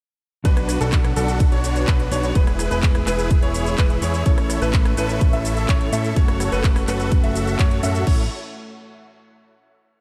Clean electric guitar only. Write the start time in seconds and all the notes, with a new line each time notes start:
0.44 B2 F#3 B3 D4 B4
1.15 B2 F#3 B3 D4 B4
2.11 F#3 B3 D4 B4
2.34 G#3 B3 E4 B4
3.06 G#3 B3 E4 B4
4.01 G#3 B3 E4 B4
4.25 A2 A3 C#4 E4 C#5
4.96 A2 A3 C#4 E4 C#5
5.92 A3 C#4 E4 C#5
6.15 A3 C#4 F#4 C#5
6.87 A3 C#4 F#4 C#5
7.83 A2 A3 C#4 F#4 C#5
8.05 A3 C#4 E4 C#5